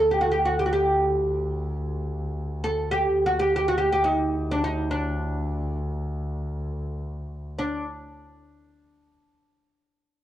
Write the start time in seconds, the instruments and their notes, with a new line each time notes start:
Already playing: double bass D2
0.11 oud G4
0.21 oud F#4
0.32 oud G4
0.45 oud F#4
0.59 oud G4
0.66 oud F#4
0.73 oud G4
2.64 oud A4
2.91 oud G4
3.15 double bass D2
3.26 oud F#4
3.40 oud G4
3.56 oud G4
3.68 oud F#4
3.78 oud G4
3.92 oud G4
4.04 oud D#4
4.51 oud D4
4.64 oud D#4
4.91 oud D4
7.59 oud D4